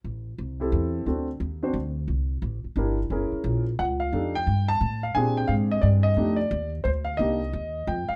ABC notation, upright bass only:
X:1
M:3/4
L:1/8
Q:"Swing" 1/4=177
K:Fmix
V:1 name="Upright bass" clef=bass
A,,,2 C,,2 =E,,2 | D,,2 E,,2 D,,2 | C,,2 A,,, z G,,,2 | _G,,, z B,,,2 _D,,2 |
F,,2 G,,2 A,,2 | B,,2 _A,,2 G,,2 | F,,2 E,,2 D,,2 | C,,2 E,,2 F,, z |]